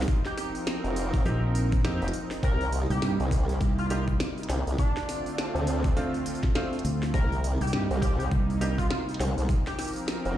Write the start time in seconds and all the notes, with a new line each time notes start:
Already playing: D#4
0.02 snare, open hi-hat
0.08 F3 C4 A#4, kick, open hi-hat
0.26 G4, snare, open hi-hat
0.38 G4, snare, open hi-hat
0.55 open hi-hat
0.67 snare, open hi-hat
0.84 F1, open hi-hat
0.96 open hi-hat
1.14 kick, open hi-hat
1.25 A#1 A#3 C4 D#4 G4, open hi-hat
1.55 open hi-hat
1.72 kick, open hi-hat
1.84 F2 A#3 C4 D#4 G4, snare, open hi-hat
2.02 F1, open hi-hat
2.08 closed hi-hat
2.13 open hi-hat
2.31 snare, open hi-hat
2.43 C2 C3 G3 A#3 A#4, kick, open hi-hat
2.61 open hi-hat
2.72 open hi-hat
2.90 C2 G4, open hi-hat
3.02 G2, snare, open hi-hat
3.20 C2, open hi-hat
3.31 kick, open hi-hat
3.49 open hi-hat
3.61 C2, kick, open hi-hat
3.79 F4, open hi-hat
3.90 A#3 D4 D#4 F4 G4, open hi-hat
4.08 kick, open hi-hat
4.20 snare, open hi-hat
4.38 open hi-hat
4.43 closed hi-hat
4.49 C2, snare, open hi-hat
4.67 C2, open hi-hat
4.78 D3 A3 C4 D4 F4, kick, open hi-hat
4.97 snare, open hi-hat
5.09 snare, open hi-hat
5.26 open hi-hat
5.38 snare, open hi-hat
5.55 D2, open hi-hat
5.67 open hi-hat
5.84 kick, open hi-hat
5.97 A3 C4 D4 F4, open hi-hat
6.14 open hi-hat
6.26 open hi-hat
6.35 open hi-hat
6.43 kick, snare
6.55 A3 C4 D4 F4, snare
6.73 open hi-hat
6.79 closed hi-hat
6.85 D2, open hi-hat
7.03 snare, open hi-hat
7.14 C2 C3 G3 A#3 D#4 A#4, kick, open hi-hat
7.32 open hi-hat
7.44 open hi-hat
7.61 C2 G4, open hi-hat
7.67 open hi-hat
7.73 G2, snare
7.90 C2, open hi-hat
8.01 G4, kick, open hi-hat
8.19 G4, open hi-hat
8.31 C2, kick, open hi-hat
8.50 open hi-hat
8.61 A#3 D4 D#4 G4, open hi-hat
8.78 F4, kick, open hi-hat
8.91 F4, snare
9.09 open hi-hat
9.14 closed hi-hat
9.20 C2, snare, open hi-hat
9.38 C2, open hi-hat
9.49 F3 C4 A#4, kick, open hi-hat
9.67 G4, snare, open hi-hat
9.79 G4, snare, open hi-hat
9.82 open hi-hat
9.85 open hi-hat
9.88 open hi-hat
9.93 open hi-hat
9.96 open hi-hat
10.08 snare, open hi-hat
10.25 F1, open hi-hat